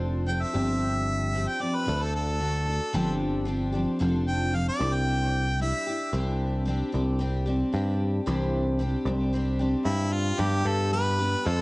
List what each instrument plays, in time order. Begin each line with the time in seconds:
Already playing: picked electric bass F1, twelve-string acoustic guitar F3 C4 D4 A4
0.27 twelve-string acoustic guitar F3 C4 D4 A4, harmonica G5
0.42 harmonica E5
0.54 picked electric bass G1, twelve-string acoustic guitar G2 D3 F3 C4 D4 G4
1.34 twelve-string acoustic guitar F3 C4 D4 G4
1.48 harmonica G5
1.60 twelve-string acoustic guitar F3 C4 D4 G4, harmonica D5
1.75 harmonica B4
1.86 picked electric bass D2, twelve-string acoustic guitar D3 A3 D4 F#4 A4
2.03 harmonica A4
2.16 harmonica A4
2.39 twelve-string acoustic guitar A3 D4 F#4 A4
2.65 twelve-string acoustic guitar D4 F#4 A4
2.93 picked electric bass G1, twelve-string acoustic guitar G2 D3 F3 C4 D4 G4
3.45 twelve-string acoustic guitar F3 C4 D4 G4
3.72 twelve-string acoustic guitar F3 C4 D4 G4
3.99 picked electric bass F1, twelve-string acoustic guitar F3 C4 D4 A4
4.28 harmonica G5
4.53 twelve-string acoustic guitar F3 C4 D4 A4, harmonica F5
4.69 harmonica D5
4.79 picked electric bass C2, twelve-string acoustic guitar C3 G3 D4 E4 G4
4.94 harmonica G5
5.59 twelve-string acoustic guitar G3 D4 E4 G4, harmonica E5
5.86 twelve-string acoustic guitar D4 E4 G4
6.12 picked electric bass C2, twelve-string acoustic guitar C3 E3 G3 C4 D4 G4
6.65 twelve-string acoustic guitar G3 C4 D4 G4
6.92 picked electric bass C2, twelve-string acoustic guitar G3 C4 D4 G4
7.19 twelve-string acoustic guitar G3 C4 D4 G4
7.46 twelve-string acoustic guitar G3 C4 D4 G4
7.72 picked electric bass G2, twelve-string acoustic guitar G3 C4 D4 G4
8.26 picked electric bass C2, twelve-string acoustic guitar C3 E3 G3 C4 D4 G4
8.79 twelve-string acoustic guitar G3 C4 D4 G4
9.05 picked electric bass C2, twelve-string acoustic guitar C4 D4 G4
9.09 twelve-string acoustic guitar G3
9.33 twelve-string acoustic guitar G3 C4 D4 G4
9.59 twelve-string acoustic guitar G3 C4 D4 G4
9.85 picked electric bass G2, twelve-string acoustic guitar G3 C4 D4 G4, harmonica E4
10.13 harmonica F4
10.38 twelve-string acoustic guitar G2 D3 G3 B3 D4 G4, picked electric bass G2, harmonica G4
10.66 picked electric bass G2, harmonica A4
10.91 twelve-string acoustic guitar G3 B3 D4 G4, harmonica B4
11.19 twelve-string acoustic guitar G3 B3 D4 G4
11.45 picked electric bass F2, twelve-string acoustic guitar F3 C4 F4 A4, harmonica A4